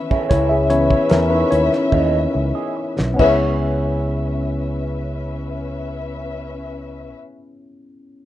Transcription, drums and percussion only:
0.11 kick medium
0.31 kick loud
0.31 closed hi-hat loud
0.70 closed hi-hat medium
0.91 kick medium
1.10 snare loud
1.10 closed hi-hat medium
1.52 closed hi-hat medium
1.72 snare soft
1.92 kick medium
2.99 snare medium
3.19 kick loud
3.19 crash medium

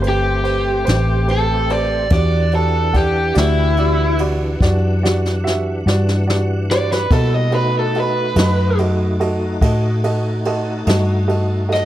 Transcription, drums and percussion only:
0.03 ride medium
0.45 ride medium
0.86 snare medium
0.86 ride medium
1.28 ride medium
1.70 ride medium
2.10 kick loud
2.10 ride medium
2.52 ride medium
2.94 kick medium
2.94 ride medium
3.35 snare loud
3.35 ride medium
3.77 ride medium
4.18 ride medium
4.61 kick medium
4.61 snare medium
5.05 snare medium
5.26 snare medium
5.47 snare medium
5.88 snare medium
6.09 snare medium
6.30 snare loud
6.71 snare medium
6.92 snare medium
7.10 kick loud
7.10 ride medium
7.52 ride medium
7.94 ride medium
8.36 snare loud
8.36 ride medium
8.78 ride medium
9.20 ride medium
9.61 kick medium
9.61 ride medium
10.04 ride medium
10.45 ride medium
10.87 snare loud
10.87 ride medium
11.29 ride medium
11.71 snare soft
11.71 ride medium

